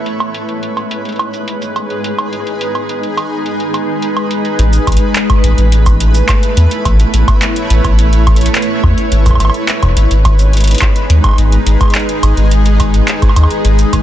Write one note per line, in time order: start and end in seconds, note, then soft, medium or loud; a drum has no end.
0.00 14.03 B4 medium
0.00 1.68 C#5 medium
0.06 4.59 G#3 medium
0.06 closed hi-hat medium
0.20 closed hi-hat soft
0.20 high woodblock medium
0.34 closed hi-hat medium
0.43 4.59 D#4 medium
0.43 6.20 G#4 medium
0.49 closed hi-hat soft
0.63 closed hi-hat medium
0.77 closed hi-hat soft
0.77 high woodblock soft
0.91 closed hi-hat medium
1.05 closed hi-hat soft
1.09 closed hi-hat soft
1.12 closed hi-hat soft
1.16 closed hi-hat soft
1.19 closed hi-hat medium
1.19 high woodblock medium
1.34 closed hi-hat soft
1.34 cabasa medium
1.48 closed hi-hat medium
1.62 closed hi-hat soft
1.62 cabasa medium
1.76 closed hi-hat medium
1.76 high woodblock soft
1.90 closed hi-hat soft
2.04 closed hi-hat medium
2.18 closed hi-hat soft
2.18 high woodblock medium
2.33 closed hi-hat medium
2.47 closed hi-hat soft
2.61 closed hi-hat medium
2.75 closed hi-hat soft
2.75 high woodblock soft
2.89 closed hi-hat medium
3.03 closed hi-hat soft
3.17 closed hi-hat medium
3.17 high woodblock medium
3.46 closed hi-hat soft
3.60 closed hi-hat soft
3.74 closed hi-hat medium
3.74 high woodblock soft
4.02 closed hi-hat medium
4.17 closed hi-hat soft
4.17 high woodblock medium
4.31 closed hi-hat medium
4.45 closed hi-hat soft
4.59 4.78 A1 loud
4.59 9.12 A3 medium
4.59 closed hi-hat medium
4.73 closed hi-hat soft
4.73 cabasa medium
4.80 9.12 E4 medium
4.87 4.97 A1 medium
4.87 kick loud
4.87 closed hi-hat soft
4.87 high woodblock medium
4.92 closed hi-hat medium
4.97 closed hi-hat medium
5.16 clap loud
5.16 closed hi-hat medium
5.30 kick loud
5.30 closed hi-hat soft
5.30 high woodblock medium
5.44 5.54 A1 loud
5.44 closed hi-hat loud
5.58 6.22 A1 medium
5.58 closed hi-hat soft
5.72 closed hi-hat medium
5.86 9.92 C#5 medium
5.86 kick loud
5.86 closed hi-hat soft
5.86 cabasa medium
5.86 high woodblock medium
6.00 closed hi-hat loud
6.15 closed hi-hat soft
6.15 cabasa medium
6.29 kick loud
6.29 clap loud
6.29 closed hi-hat medium
6.29 high woodblock medium
6.43 closed hi-hat soft
6.57 6.67 E2 loud
6.57 closed hi-hat loud
6.71 closed hi-hat soft
6.85 7.05 A1 loud
6.85 kick loud
6.85 closed hi-hat medium
6.85 high woodblock medium
7.00 closed hi-hat soft
7.14 7.23 A1 medium
7.14 closed hi-hat loud
7.28 kick loud
7.28 closed hi-hat soft
7.28 high woodblock medium
7.42 clap loud
7.42 closed hi-hat medium
7.56 closed hi-hat soft
7.70 7.80 A1 loud
7.70 closed hi-hat loud
7.84 8.48 A1 medium
7.84 kick loud
7.84 closed hi-hat soft
7.84 high woodblock medium
7.99 closed hi-hat medium
8.13 closed hi-hat soft
8.27 kick loud
8.27 closed hi-hat soft
8.27 high woodblock medium
8.36 closed hi-hat medium
8.41 closed hi-hat soft
8.46 closed hi-hat medium
8.55 clap loud
8.55 closed hi-hat medium
8.62 closed hi-hat soft
8.83 8.93 E2 loud
8.83 kick loud
8.83 high woodblock medium
8.98 closed hi-hat soft
9.12 9.31 G#1 loud
9.12 13.65 G#3 medium
9.12 closed hi-hat medium
9.26 kick loud
9.26 closed hi-hat soft
9.26 cabasa medium
9.26 high woodblock soft
9.29 kick loud
9.29 high woodblock soft
9.33 13.65 D#4 medium
9.33 kick medium
9.33 high woodblock soft
9.37 9.50 G#1 medium
9.37 kick medium
9.37 closed hi-hat medium
9.37 high woodblock medium
9.45 high woodblock medium
9.50 high woodblock medium
9.54 closed hi-hat soft
9.68 clap loud
9.68 closed hi-hat medium
9.83 kick loud
9.83 closed hi-hat soft
9.83 high woodblock medium
9.85 kick medium
9.87 kick medium
9.90 kick medium
9.92 kick soft
9.94 10.06 G#1 loud
9.94 14.03 G#4 medium
9.94 kick soft
9.94 closed hi-hat loud
10.11 10.75 G#1 medium
10.11 closed hi-hat soft
10.25 kick loud
10.25 closed hi-hat medium
10.25 high woodblock medium
10.39 closed hi-hat soft
10.39 cabasa medium
10.53 closed hi-hat soft
10.57 closed hi-hat soft
10.60 closed hi-hat medium
10.64 closed hi-hat medium
10.67 closed hi-hat medium
10.71 closed hi-hat medium
10.75 closed hi-hat medium
10.78 kick loud
10.78 clap loud
10.78 closed hi-hat medium
10.82 closed hi-hat medium
10.82 high woodblock medium
10.96 closed hi-hat soft
11.10 11.20 D#2 loud
11.10 closed hi-hat medium
11.24 kick loud
11.24 closed hi-hat soft
11.24 high woodblock medium
11.26 high woodblock medium
11.29 high woodblock soft
11.31 high woodblock soft
11.34 high woodblock soft
11.36 11.58 G#1 loud
11.36 closed hi-hat medium
11.36 high woodblock soft
11.52 closed hi-hat soft
11.66 11.76 G#1 medium
11.66 closed hi-hat medium
11.81 kick loud
11.81 closed hi-hat soft
11.81 high woodblock soft
11.83 high woodblock soft
11.85 high woodblock soft
11.88 closed hi-hat soft
11.88 high woodblock soft
11.90 high woodblock soft
11.92 clap loud
11.92 closed hi-hat medium
11.92 high woodblock soft
12.09 closed hi-hat soft
12.23 12.33 G#1 loud
12.23 closed hi-hat medium
12.23 high woodblock medium
12.37 13.01 G#1 medium
12.37 closed hi-hat soft
12.51 closed hi-hat medium
12.66 closed hi-hat soft
12.80 kick loud
12.80 closed hi-hat medium
12.80 high woodblock medium
12.94 closed hi-hat soft
13.08 clap loud
13.08 closed hi-hat medium
13.22 kick loud
13.22 closed hi-hat soft
13.22 high woodblock soft
13.29 high woodblock soft
13.36 13.46 D#2 loud
13.36 closed hi-hat medium
13.36 high woodblock medium
13.43 high woodblock medium
13.51 closed hi-hat soft
13.65 13.84 G#1 loud
13.65 closed hi-hat medium
13.79 closed hi-hat soft
13.79 cabasa medium
13.93 14.03 G#1 medium
13.93 kick loud
13.93 closed hi-hat medium
13.93 high woodblock medium